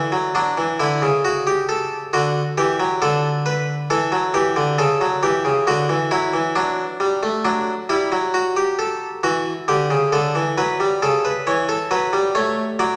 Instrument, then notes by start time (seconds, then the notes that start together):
harpsichord
Already playing: E3
0.12 F#3
0.35 F#3 D4
0.57 E3
0.80 D3 E4
1.02 C#3
1.25 F#4
1.47 G4
1.69 A4
2.13 D3 F#4
2.58 E3 G4
2.80 F#3
3.02 D3 A4
3.46 B4
3.90 E3 A4
4.12 F#3
4.34 E3 G4
4.56 D3
4.78 C#3 A4
5.01 F#3
5.23 E3 G4
5.45 C#3
5.67 D3 F#4
5.89 E3
6.11 F#3 E4
6.34 E3
6.56 F#3 D4
7.00 G3
7.23 A3
7.45 F#3 D4
7.89 G3 E4
8.12 F#3
8.34 F#4
8.57 G4
8.79 A4
9.23 E3 F#4
9.68 D3 G4
9.91 C#3
10.12 D3 A4
10.35 E3
10.58 F#3 B4
10.80 G3
11.02 C#3 A4
11.25 B4
11.47 E3 C#5
11.69 A4
11.91 F#3 B4
12.13 G3
12.35 A3 C#5
12.79 F#3 D5